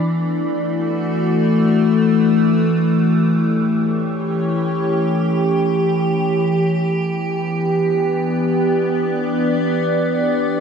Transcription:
ambient pad
Already playing: E3 A3 B3 D4 D5
0.45 F#4
3.11 G4
3.58 C#5
3.85 C#4
6.63 B3
7.36 D4
7.87 D5

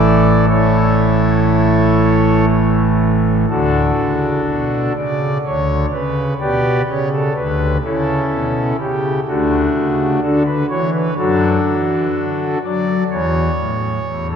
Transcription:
pipe organ
Already playing: A1 A2 E3 A3 E4 A4 D5
0.48 E4 A4 C#5
3.49 D2 D3 D4 F#4 A4
3.99 C#3
4.48 B2
4.96 C#3 D5
5.46 D2 D3 C#5
5.93 C#3 B4
6.40 B2 G4 B4 D5
6.88 C#3 C#5
7.13 A4
7.36 D2 D3 B4
7.83 C#3 C#4 E4 A4
8.32 B2
8.80 C#3 G4
9.28 D2 D3 A3 D4 F#4
9.75 C#3
10.22 D3 D4 F#4 A4
10.45 B4
10.70 E3 C#5
10.94 B4
11.18 F#2 F#3 D4 F#4 A4
11.67 E3
12.14 D3
12.63 F#3 D5
13.10 E2 E3 C#5
13.58 A2
14.06 E2
14.30 A4

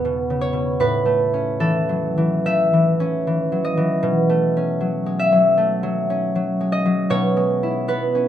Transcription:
harp
Already playing: E2 G#3 B3 C#5 D#5
0.05 B2
0.30 C#3
0.41 C#5
0.53 B2
0.80 A2 B4
1.05 A3
1.34 C#4
1.60 E3 A4
1.89 F#3
2.18 E3
2.46 A3 E5
2.73 E3
3.00 C#4
3.27 E3
3.52 F#3
3.65 D#5
3.77 E3
4.03 B2
4.29 A3
4.57 C#4
4.81 F#3
5.06 G#3
5.19 E5
5.32 F#3
5.58 A3
5.83 F#3
6.10 C#4
6.35 F#3
6.61 G#3
6.72 D#5
6.86 F#3
7.10 B2 C#5
7.37 G#3
7.63 E4
7.88 B3 B4
8.15 C#4

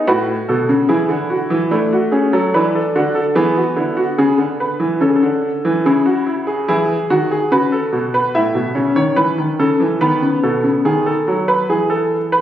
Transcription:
grand piano
0.07 A2 F#4 B4
0.49 B2 A4
0.69 C#3
0.89 E3 E4 G#4
1.09 D3
1.30 F#4
1.50 E3
1.71 A3 D4 E4
1.93 F#4
2.12 C#4 G#4
2.33 F#3 A4
2.54 E3 D4 B4
2.75 A4
2.96 D3 F#4
3.15 A4
3.35 E3 B3 G#4
3.56 F#4
3.76 D3 E4
3.97 F#4
4.18 C#3 G#4
4.38 D3
4.60 B4
4.80 E3
5.01 C#3 C#4 A4
5.09 G#4
5.16 A4
5.23 D3
5.65 E3
5.86 C#3 E4 G#4
6.06 F#4
6.26 E4
6.47 G#4
6.68 E3 E4 G#4
7.10 D#3 F#4
7.31 G#4
7.52 C#3 F#4 B4
7.72 A4
7.92 B2
8.14 B4
8.35 A2 E4 E5
8.55 B2
8.75 C#3 C#4
8.96 D#3 C#5
9.16 E3 B4
9.38 D#3
9.59 C#3 A4
9.80 E3
10.01 D#3 B3 B4
10.22 C#3
10.43 B2 A4
10.64 C#3
10.85 D#3 G#4
11.06 A4
11.28 F#3
11.48 B4
11.70 E3 G#4
11.90 A4
12.32 B4

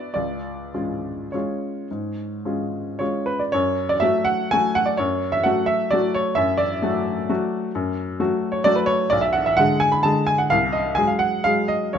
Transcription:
upright piano
Already playing: B3 D4 F#4 D5
0.14 C#2 D5
0.74 G#3 C#4 F4
1.32 G#3 C#4 F4 C#5
1.91 G#2
2.45 G#3 C#4 F4
2.99 G#3 C#4 F4 C#5
3.26 B4
3.39 D5
3.52 F#2 C#5
3.89 D5
4.00 F#3 A3 F#4 E5
4.25 F#5
4.51 F#3 A3 F#4 G#5
4.75 F#5
4.86 D5
4.97 F#2 C#5
5.32 E5
5.43 F#3 A3 F#4 F#5
5.66 E5
5.91 F#3 A3 F#4 D5
6.14 C#5
6.35 F#2 E5
6.58 D5
6.82 F#3 A3 F#4
7.29 F#3 A3 F#4
7.75 F#2
8.20 F#3 A3 F#4
8.52 C#5
8.64 F#3 A3 F#4 D5
8.75 B4
8.86 C#5
9.10 B1 D5
9.21 E5
9.33 F#5
9.46 E5
9.57 D3 G#3 G#4 F#5
9.80 G#5
9.92 B5
10.03 D3 G#3 G#4 A5
10.27 G#5
10.38 F#5
10.50 C2 F5
10.73 D#5
10.95 F#3 G#3 G#4 G#5
11.07 F5
11.19 F#5
11.44 F#3 G#3 G#4 F5
11.68 D#5
11.93 C#2 C#5

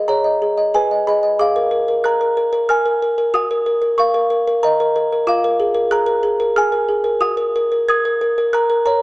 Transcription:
music box
Already playing: D#5
0.08 G#4 C#5 A#5
0.24 D#5
0.42 G#4
0.58 D#5
0.74 G#4 B4 G#5
0.91 D#5
1.07 G#4 D#5 B5
1.23 D#5
1.39 G#4 F5 D6
1.56 A#4
1.71 A#4
1.88 A#4
2.04 A#4 A#5 F#6
2.21 A#4
2.37 A#4
2.53 A#4
2.69 A#4 G#5 F6
2.86 A#4
3.02 A#4
3.18 A#4
3.34 F#4 F#5 D#6
3.51 A#4
3.66 A#4
3.82 A#4
3.98 A#4 F5 C#6
4.14 A#4
4.30 A#4
4.47 A#4
4.63 A#4 D#5 A#5
4.80 A#4
4.96 A#4
5.12 A#4
5.27 F4 F5 D6
5.44 A#4
5.60 G#4
5.74 A#4
5.91 G#4 A#5 F#6
6.06 A#4
6.23 G#4
6.40 A#4
6.56 G#4 G#5 F6
6.72 A#4
6.88 G#4
7.04 A#4
7.21 F#4 F#5 D#6
7.37 A#4
7.56 A#4
7.72 A#4
7.88 A#4 D#6 G#6
8.05 A#4
8.21 A#4
8.38 A#4
8.53 A#4 A#5 F#6
8.70 A#4
8.86 A#4 C#5 A#5

